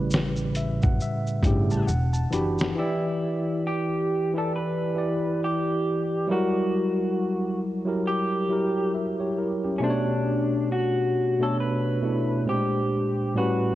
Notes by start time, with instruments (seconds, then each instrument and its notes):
Already playing: upright bass A1, tine electric piano A2 C#3 G3 B4, clean electric guitar D5
0.10 snare, shaker
0.36 shaker
0.55 tine electric piano E5, closed hi-hat, shaker
0.82 upright bass F#1, tine electric piano F#5, kick, shaker
1.00 tine electric piano E5, shaker
1.27 shaker
1.43 upright bass G1, tine electric piano A2 C#3 G3 G5, kick, closed hi-hat, shaker
1.47 tine electric piano G4
1.70 upright bass A1, tine electric piano A5, shaker
1.87 upright bass E1, tine electric piano F#5, shaker
2.13 tine electric piano A5, shaker
2.31 upright bass F#1, tine electric piano E3 D4 F#4 G4 B5, closed hi-hat, shaker
2.59 snare, shaker
2.76 tine electric piano E3 E4 G4 D5, clean electric guitar E4
3.67 clean electric guitar G4
4.34 tine electric piano E3 E4 G4 D5
4.38 clean electric guitar A4
4.56 clean electric guitar B4
4.95 tine electric piano E3 E4 G4 D5
5.44 clean electric guitar G4
6.27 tine electric piano F#3 G3 E4 A#4
6.32 clean electric guitar F#4
7.85 tine electric piano F#3 E4 G4 A#4
8.07 clean electric guitar G4
8.49 tine electric piano F#3 E4 G4 A#4
8.94 tine electric piano A#4 E5
9.20 tine electric piano G4 C#5
9.38 tine electric piano E4 A#4
9.64 tine electric piano C#4 G4
9.78 tine electric piano B2 A3 D4, clean electric guitar C#4
9.83 clean electric guitar D4, tine electric piano C5
9.90 tine electric piano C#5
10.72 clean electric guitar F#4
11.39 tine electric piano B2 A3 D4 C#5, clean electric guitar A4
11.60 clean electric guitar B4
12.02 tine electric piano B2 A3 D4 E4
12.46 tine electric piano A#2 G#3 C4 C5, clean electric guitar G4
12.54 tine electric piano D4
13.35 tine electric piano A2 G3 C#4 B4, clean electric guitar F#4